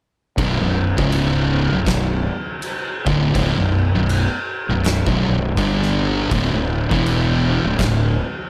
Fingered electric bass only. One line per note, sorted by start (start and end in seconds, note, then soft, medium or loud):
0.38 0.59 B0 loud
0.60 0.95 B0 medium
0.98 1.68 C#1 loud
1.72 1.85 B0 medium
1.86 2.29 B0 medium
3.06 3.33 D1 loud
3.35 3.56 C#1 loud
3.57 3.92 B0 medium
3.94 4.29 B0 medium
4.69 5.03 B0 medium
5.06 5.27 B0 loud
5.28 5.55 B0 medium
5.57 6.27 G1 loud
6.31 6.52 D1 loud
6.53 6.88 D1 medium
6.91 7.61 E1 medium
7.64 7.78 D1 medium
7.79 8.22 D1 medium